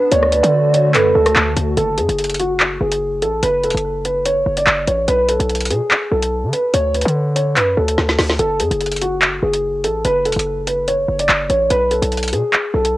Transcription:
0.00 0.10 B3 medium
0.00 0.10 D4 medium
0.00 0.11 B4 medium
0.12 0.42 D2 loud
0.12 1.76 D3 medium
0.12 1.76 A3 medium
0.12 1.75 F#4 medium
0.12 0.31 C#5 loud
0.12 0.91 D5 loud
0.12 closed hi-hat medium
0.23 cross-stick medium
0.32 0.71 B4 medium
0.32 closed hi-hat medium
0.43 0.96 D3 loud
0.43 closed hi-hat medium
0.74 0.93 C#5 medium
0.74 closed hi-hat medium
0.94 1.14 F#2 loud
0.94 1.73 A4 loud
0.94 1.14 B4 loud
0.94 clap medium
0.94 closed hi-hat medium
1.15 1.35 D2 loud
1.15 1.73 A4 medium
1.26 cross-stick medium
1.26 closed hi-hat medium
1.36 1.56 D2 loud
1.36 clap loud
1.56 1.76 D2 loud
1.56 closed hi-hat medium
1.77 1.99 F#1 loud
1.77 1.97 A4 loud
1.77 closed hi-hat medium
1.98 2.08 F#2 loud
1.98 2.37 G#4 medium
1.98 closed hi-hat medium
2.09 2.78 F#1 loud
2.09 closed hi-hat medium
2.19 closed hi-hat soft
2.24 closed hi-hat medium
2.30 closed hi-hat medium
2.34 closed hi-hat medium
2.39 2.78 F#4 medium
2.39 closed hi-hat medium
2.60 clap loud
2.81 3.24 F#1 loud
2.81 3.20 G#4 medium
2.92 closed hi-hat medium
3.22 3.42 A1 loud
3.22 3.42 A4 medium
3.22 closed hi-hat medium
3.43 3.65 F#1 loud
3.43 3.62 B4 loud
3.43 closed hi-hat medium
3.63 3.74 F1 loud
3.63 4.02 A4 medium
3.63 closed hi-hat soft
3.70 closed hi-hat medium
3.74 4.43 F#1 loud
3.74 closed hi-hat medium
4.05 4.24 B4 medium
4.05 closed hi-hat medium
4.26 4.55 C#5 medium
4.26 closed hi-hat medium
4.46 4.66 F#1 loud
4.57 4.86 D5 medium
4.57 closed hi-hat medium
4.67 4.87 F#1 loud
4.67 clap loud
4.88 5.07 A1 loud
4.88 5.07 C#5 medium
4.88 closed hi-hat medium
5.08 5.39 B1 loud
5.08 5.28 B4 loud
5.08 closed hi-hat medium
5.29 5.68 A4 medium
5.29 closed hi-hat medium
5.40 5.72 B1 loud
5.40 closed hi-hat medium
5.50 closed hi-hat soft
5.55 closed hi-hat medium
5.61 closed hi-hat medium
5.65 closed hi-hat medium
5.70 5.81 B2 loud
5.70 6.09 G#4 medium
5.70 closed hi-hat medium
5.91 clap loud
6.12 6.45 B1 loud
6.12 6.51 A4 medium
6.23 closed hi-hat medium
6.43 6.53 D3 loud
6.53 6.73 B4 medium
6.53 closed hi-hat medium
6.74 7.04 D2 loud
6.74 6.93 C#5 loud
6.74 closed hi-hat medium
6.94 7.33 B4 medium
6.94 closed hi-hat medium
7.01 closed hi-hat medium
7.05 7.58 D3 loud
7.05 closed hi-hat medium
7.36 7.55 C#5 medium
7.36 closed hi-hat medium
7.56 7.76 F#2 medium
7.56 7.76 B4 loud
7.56 clap medium
7.56 closed hi-hat medium
7.77 7.97 D2 loud
7.77 8.36 A4 medium
7.88 closed hi-hat medium
7.98 8.18 D2 loud
7.98 snare medium
8.09 snare medium
8.19 8.38 D2 loud
8.19 snare medium
8.19 open hi-hat medium
8.30 snare medium
8.39 8.61 F#1 loud
8.39 8.59 A4 loud
8.39 closed hi-hat medium
8.60 8.70 F#2 loud
8.60 8.99 G#4 medium
8.60 closed hi-hat medium
8.71 9.40 F#1 loud
8.71 closed hi-hat medium
8.81 closed hi-hat soft
8.86 closed hi-hat medium
8.92 closed hi-hat medium
8.96 closed hi-hat medium
9.02 9.40 F#4 medium
9.02 closed hi-hat medium
9.22 clap loud
9.43 9.86 F#1 loud
9.43 9.82 G#4 medium
9.54 closed hi-hat medium
9.84 10.04 A1 loud
9.84 10.04 A4 medium
9.84 closed hi-hat medium
10.05 10.27 F#1 loud
10.05 10.24 B4 loud
10.05 closed hi-hat medium
10.25 10.36 F1 loud
10.25 10.64 A4 medium
10.25 closed hi-hat soft
10.32 closed hi-hat medium
10.36 11.05 F#1 loud
10.36 closed hi-hat medium
10.67 10.86 B4 medium
10.67 closed hi-hat medium
10.88 11.17 C#5 medium
10.88 closed hi-hat medium
11.08 11.28 F#1 loud
11.19 11.48 D5 medium
11.19 closed hi-hat medium
11.29 11.49 F#1 loud
11.29 clap loud
11.50 11.69 A1 loud
11.50 11.69 C#5 medium
11.50 closed hi-hat medium
11.70 12.01 B1 loud
11.70 11.90 B4 loud
11.70 closed hi-hat medium
11.91 12.30 A4 medium
11.91 closed hi-hat medium
12.02 12.34 B1 loud
12.02 closed hi-hat medium
12.12 closed hi-hat soft
12.17 closed hi-hat medium
12.23 closed hi-hat medium
12.28 closed hi-hat medium
12.32 12.43 B2 loud
12.32 12.71 G#4 medium
12.32 closed hi-hat medium
12.53 clap loud
12.74 12.97 B1 loud
12.74 12.97 A4 medium
12.85 closed hi-hat medium

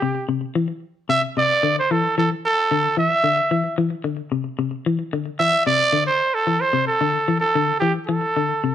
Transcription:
0.00 0.18 C3 medium
0.00 0.25 G4 medium
0.29 0.44 C3 medium
0.55 0.71 E3 medium
1.09 1.25 C3 medium
1.09 1.21 E5 loud
1.37 1.53 C3 medium
1.37 1.75 D5 loud
1.63 1.79 D3 medium
1.79 1.93 C5 medium
1.91 2.07 E3 medium
1.91 2.17 A4 medium
2.18 2.33 E3 medium
2.18 2.29 A4 medium
2.45 2.94 A4 medium
2.71 2.87 D3 medium
2.97 3.13 E3 medium
2.97 3.74 E5 loud
3.24 3.40 D3 medium
3.51 3.67 E3 medium
3.78 3.94 E3 medium
4.04 4.20 D3 medium
4.32 4.48 C3 medium
4.59 4.75 C3 medium
4.86 5.02 E3 medium
5.13 5.29 D3 medium
5.39 5.56 E3 medium
5.39 5.64 E5 loud
5.66 5.82 C3 medium
5.66 6.05 D5 loud
5.93 6.09 D3 medium
6.06 6.36 C5 medium
6.34 6.62 A4 medium
6.47 6.63 E3 medium
6.61 6.86 C5 loud
6.73 6.89 C3 medium
6.87 7.37 A4 loud
7.01 7.17 D3 medium
7.28 7.44 E3 medium
7.40 7.77 A4 medium
7.55 7.71 D3 medium
7.80 7.98 E3 medium
7.80 7.92 G4 medium
8.07 8.25 E3 medium
8.07 8.75 A4 medium
8.37 8.52 D3 medium
8.64 8.75 C3 medium

